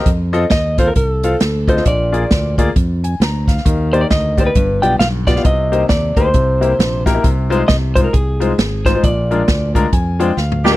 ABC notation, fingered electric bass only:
X:1
M:4/4
L:1/8
Q:"Swing" 1/4=134
K:Fdor
V:1 name="Fingered electric bass" clef=bass
F,,2 E,,2 C,,2 D,,2 | B,,,2 D,,2 F,,2 D,,2 | E,,2 D,,2 G,,, =B,,, B,,,2 | C,,2 E,, D,, C,,2 B,,,2 |
C,,2 C,,2 C,,2 A,,,2 | B,,,2 D,,2 F,,2 D,,2 |]